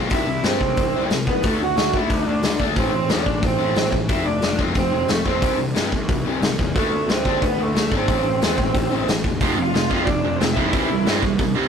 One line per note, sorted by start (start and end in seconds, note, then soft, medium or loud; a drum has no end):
0.00 0.11 F3 loud
0.00 0.11 A3 loud
0.00 0.11 C4 loud
0.10 0.26 C2 medium
0.10 0.26 C3 medium
0.10 0.26 E3 loud
0.10 0.27 G3 loud
0.10 0.43 E4 medium
0.10 0.47 E5 loud
0.10 kick loud
0.10 open hi-hat medium
0.27 0.43 C2 medium
0.27 0.42 C3 medium
0.27 0.43 E3 medium
0.43 0.59 G2 medium
0.43 0.60 C3 medium
0.43 0.60 E3 medium
0.43 0.60 G3 loud
0.43 1.06 C4 medium
0.43 1.07 C5 medium
0.43 snare loud
0.43 open hi-hat medium
0.61 0.76 C2 medium
0.61 0.76 C3 medium
0.61 0.77 E3 medium
0.61 kick medium
0.77 0.92 C2 medium
0.77 0.93 C3 medium
0.77 0.93 E3 medium
0.77 kick loud
0.77 open hi-hat medium
0.95 1.10 C2 medium
0.95 1.11 C3 medium
0.95 1.10 E3 medium
0.95 1.11 G3 loud
1.10 1.26 C2 medium
1.10 1.26 C3 medium
1.10 1.26 E3 medium
1.10 snare loud
1.10 open hi-hat medium
1.26 1.42 C2 medium
1.26 1.43 C3 medium
1.26 1.43 E3 medium
1.26 1.43 B3 medium
1.26 1.46 B4 medium
1.26 kick medium
1.43 1.59 D2 loud
1.43 1.60 D3 medium
1.43 1.59 A3 medium
1.43 1.60 A3 medium
1.43 1.61 D4 medium
1.43 1.62 A4 medium
1.43 kick loud
1.43 open hi-hat medium
1.60 1.75 D2 medium
1.60 1.77 D3 medium
1.60 1.77 A3 medium
1.60 1.92 F#4 medium
1.60 1.96 F#5 loud
1.76 1.92 D2 medium
1.76 1.93 D3 medium
1.76 1.93 A3 medium
1.76 snare loud
1.76 open hi-hat medium
1.94 2.09 D2 medium
1.94 2.10 D3 medium
1.94 2.10 A3 medium
1.94 2.10 D4 loud
1.94 2.11 E4 medium
1.94 2.13 E5 loud
1.94 kick medium
2.10 2.25 D2 medium
2.10 2.26 D3 medium
2.10 2.26 A3 medium
2.10 2.57 D4 medium
2.10 2.61 D5 loud
2.10 kick loud
2.10 open hi-hat medium
2.27 2.42 D2 medium
2.27 2.43 D3 medium
2.27 2.43 A3 medium
2.43 2.59 D2 medium
2.43 2.59 D3 medium
2.43 2.59 A3 medium
2.43 snare loud
2.43 open hi-hat medium
2.60 2.75 D2 medium
2.60 2.76 D3 medium
2.60 2.75 A3 loud
2.60 2.77 D4 loud
2.60 kick medium
2.76 2.91 A1 medium
2.76 2.92 A2 loud
2.76 2.92 E3 loud
2.76 2.92 A3 loud
2.76 3.08 C4 medium
2.76 3.08 C5 medium
2.76 kick loud
2.76 open hi-hat medium
2.93 3.08 A1 medium
2.93 3.08 A2 medium
2.93 3.08 E3 medium
3.09 3.25 E2 medium
3.09 3.25 A2 medium
3.09 3.25 E3 medium
3.09 3.26 A3 medium
3.09 3.42 D4 medium
3.09 3.45 D5 medium
3.09 snare loud
3.09 open hi-hat medium
3.26 3.41 A1 medium
3.26 3.41 A2 medium
3.26 3.42 E3 medium
3.26 kick medium
3.42 3.58 A1 medium
3.42 3.57 A2 medium
3.42 3.58 E3 medium
3.42 3.90 C4 medium
3.42 3.91 C5 medium
3.42 kick loud
3.42 open hi-hat medium
3.58 3.75 A1 medium
3.58 3.74 A2 medium
3.58 3.74 E3 medium
3.58 3.75 A3 loud
3.75 3.92 A1 medium
3.75 3.91 A2 medium
3.75 3.91 E3 medium
3.75 snare loud
3.75 open hi-hat medium
3.92 4.08 A1 medium
3.92 4.07 A2 medium
3.92 4.08 E3 medium
3.92 kick medium
4.09 4.24 F1 loud
4.09 4.25 F3 medium
4.09 4.25 A3 loud
4.09 4.25 C4 loud
4.09 4.25 E4 medium
4.09 4.26 E5 medium
4.09 kick loud
4.09 open hi-hat medium
4.25 4.41 F1 medium
4.25 4.41 F3 medium
4.25 4.41 A3 medium
4.25 4.56 D4 medium
4.25 4.57 D5 medium
4.42 4.58 F1 medium
4.42 4.57 F3 medium
4.42 4.58 A3 medium
4.42 snare loud
4.42 open hi-hat medium
4.59 4.74 F1 medium
4.59 4.74 F3 medium
4.59 4.74 A3 medium
4.59 4.75 C4 medium
4.59 kick medium
4.74 4.90 F1 medium
4.74 4.91 F3 medium
4.74 4.91 A3 medium
4.74 5.07 C4 medium
4.74 5.11 C5 medium
4.74 kick loud
4.74 open hi-hat medium
4.92 5.07 F1 medium
4.92 5.07 F3 medium
4.92 5.07 A3 medium
5.08 5.23 F1 medium
5.08 5.24 F3 medium
5.08 5.24 A3 medium
5.08 5.25 A3 medium
5.08 5.25 A4 medium
5.08 snare loud
5.08 open hi-hat medium
5.25 5.41 F1 medium
5.25 5.41 F3 medium
5.25 5.42 A3 loud
5.25 5.56 C4 medium
5.25 5.42 C4 loud
5.25 5.57 C5 medium
5.25 kick medium
5.42 5.57 C2 medium
5.42 5.57 C3 medium
5.42 5.57 E3 medium
5.42 5.58 G3 loud
5.42 kick loud
5.42 open hi-hat medium
5.58 5.74 C2 medium
5.58 5.73 C3 medium
5.58 5.74 E3 medium
5.74 5.91 G2 medium
5.74 5.90 C3 medium
5.74 5.90 E3 loud
5.74 5.91 G3 medium
5.74 snare loud
5.74 open hi-hat medium
5.91 6.07 C2 medium
5.91 6.07 C3 medium
5.91 6.07 E3 medium
5.91 kick medium
6.09 6.24 C2 medium
6.09 6.24 C3 medium
6.09 6.24 E3 medium
6.09 kick loud
6.09 open hi-hat medium
6.25 6.40 C2 medium
6.25 6.41 C3 medium
6.25 6.41 E3 medium
6.25 6.42 G3 medium
6.41 6.56 C2 medium
6.41 6.58 C3 medium
6.41 6.58 E3 medium
6.41 snare loud
6.41 open hi-hat medium
6.58 6.74 E2 medium
6.58 6.74 C3 medium
6.58 6.74 E3 medium
6.58 kick medium
6.75 6.90 D2 loud
6.75 6.91 D3 medium
6.75 6.91 A3 loud
6.75 7.07 A3 medium
6.75 6.92 D4 loud
6.75 7.10 A4 loud
6.75 kick loud
6.75 open hi-hat medium
6.92 7.07 D2 medium
6.92 7.08 D3 medium
6.92 7.08 A3 medium
7.08 7.23 D2 loud
7.08 7.24 D3 medium
7.08 7.24 A3 medium
7.08 7.40 C4 medium
7.08 7.41 C5 loud
7.08 snare loud
7.08 open hi-hat medium
7.25 7.40 D2 medium
7.25 7.41 D3 medium
7.25 7.42 A3 medium
7.25 7.42 D4 medium
7.25 kick medium
7.42 7.57 D2 medium
7.42 7.57 D3 medium
7.42 7.57 A3 medium
7.42 7.58 B3 medium
7.42 7.62 B4 loud
7.42 kick loud
7.42 open hi-hat medium
7.57 7.73 D2 medium
7.57 7.74 D3 medium
7.57 7.73 A3 medium
7.57 7.90 A3 medium
7.62 7.95 A4 medium
7.75 7.90 D2 medium
7.75 7.90 D3 medium
7.75 7.90 A3 medium
7.75 snare loud
7.75 open hi-hat medium
7.91 8.07 G#1 medium
7.91 8.07 D3 loud
7.91 8.07 A3 loud
7.91 8.08 D4 loud
7.91 kick medium
7.95 9.06 C4 medium
7.95 9.07 C5 medium
8.08 8.22 A1 loud
8.08 8.24 A2 medium
8.08 8.24 E3 loud
8.08 8.24 A3 loud
8.08 kick loud
8.08 open hi-hat medium
8.23 8.39 A1 medium
8.23 8.41 A2 medium
8.23 8.41 E3 medium
8.41 8.56 E2 medium
8.41 8.57 A2 medium
8.41 8.58 E3 medium
8.41 8.58 A3 loud
8.41 snare loud
8.41 open hi-hat medium
8.57 8.73 A1 medium
8.57 8.73 A2 medium
8.57 8.74 E3 medium
8.57 kick medium
8.74 8.89 A1 medium
8.74 8.90 A2 medium
8.74 8.90 E3 medium
8.74 kick loud
8.74 open hi-hat medium
8.90 9.05 A1 medium
8.90 9.07 A2 medium
8.90 9.07 E3 medium
8.90 9.07 A3 loud
9.08 9.23 A1 medium
9.08 9.23 A2 medium
9.08 9.23 E3 medium
9.08 snare loud
9.08 open hi-hat medium
9.24 9.39 E1 medium
9.24 9.40 A2 medium
9.24 9.40 E3 medium
9.24 kick medium
9.41 9.56 F1 loud
9.41 9.55 F2 medium
9.41 9.56 C3 medium
9.41 9.57 F3 medium
9.41 9.57 A3 loud
9.41 9.58 C4 medium
9.41 kick loud
9.41 open hi-hat medium
9.56 9.72 F1 medium
9.56 9.72 F2 medium
9.56 9.72 C3 medium
9.56 9.73 F3 medium
9.56 9.73 A3 medium
9.62 10.05 F4 medium
9.62 10.04 F5 loud
9.73 9.89 F1 medium
9.73 9.89 F2 medium
9.73 9.89 C3 medium
9.73 9.89 F3 medium
9.73 9.89 A3 medium
9.73 snare loud
9.73 open hi-hat medium
9.90 10.06 F1 medium
9.90 10.05 F2 medium
9.90 10.05 C3 medium
9.90 10.06 F3 medium
9.90 10.07 A3 medium
9.90 10.07 C4 medium
9.90 kick medium
10.04 10.22 F1 medium
10.04 10.22 F2 medium
10.04 10.22 C3 medium
10.04 10.39 D4 medium
10.04 10.37 D5 medium
10.04 kick loud
10.04 open hi-hat medium
10.09 10.23 F3 medium
10.09 10.23 A3 medium
10.24 10.39 F1 medium
10.24 10.39 F2 medium
10.24 10.39 C3 medium
10.24 10.39 F3 medium
10.24 10.40 A3 medium
10.36 10.45 C4 medium
10.36 10.41 C5 medium
10.40 10.55 F1 medium
10.40 10.55 F2 medium
10.40 10.56 C3 medium
10.40 10.54 F3 medium
10.40 10.55 A3 medium
10.40 snare loud
10.40 open hi-hat medium
10.53 10.72 F1 medium
10.53 10.72 F2 loud
10.53 10.72 F3 medium
10.53 10.72 A3 loud
10.53 11.17 E5 medium
10.57 10.71 C3 medium
10.57 10.72 F3 loud
10.57 10.73 C4 loud
10.57 11.19 E4 medium
10.57 kick medium
10.72 10.88 C2 loud
10.72 10.89 C3 medium
10.72 10.88 C3 medium
10.72 10.89 E3 loud
10.72 10.88 G3 medium
10.72 10.89 G3 loud
10.72 10.89 C4 medium
10.72 kick loud
10.72 open hi-hat medium
10.89 11.05 C2 medium
10.89 11.05 C3 medium
10.89 11.05 E3 medium
10.89 11.05 G3 medium
11.06 11.22 G2 medium
11.06 11.21 C3 medium
11.06 11.21 E3 loud
11.06 11.22 G3 medium
11.06 11.23 G3 medium
11.06 11.23 C4 loud
11.06 snare loud
11.06 open hi-hat medium
11.22 11.38 C2 medium
11.22 11.37 C3 medium
11.22 11.38 C3 medium
11.22 11.38 E3 medium
11.22 11.38 G3 medium
11.22 kick medium
11.38 11.54 C2 medium
11.38 11.54 C3 medium
11.38 11.55 E3 medium
11.38 11.54 G3 medium
11.38 kick loud
11.38 open hi-hat medium
11.55 11.68 C2 medium
11.55 11.68 C3 medium
11.55 11.68 E3 medium
11.55 11.68 G3 medium
11.55 11.68 C4 loud